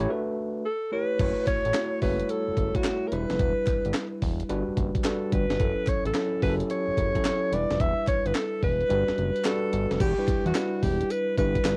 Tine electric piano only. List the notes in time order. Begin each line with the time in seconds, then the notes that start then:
0.00 A3 E4 G4 C#5
0.09 A3 D4 F#4 B4
0.92 A3 E4 G4 C#5
1.19 A3 E4 F#4 C#5
1.74 A3 E4 F#4 C#5
2.01 G3 E4 F#4 C#5
2.08 A3
2.74 A3 E4 F#4 C#5
3.12 G3 D4 E4 B4
4.49 G3 D4 F#4 B4
5.04 G3 D4 F#4 B4
5.60 F#3 C#4 E4 A4
6.15 F#3 C#4 E4 A4
6.42 F#3 C#4 E4 G4
6.50 A4
7.15 F#3 C#4 E4 A4
7.52 G3 D4 E4 B4
8.89 G3 D4 F#4 B4
9.45 G3 D4 F#4 B4
10.18 G3 D4 E4 B4
10.55 G3 D4 E4 B4
11.38 G3 D4 E4 B4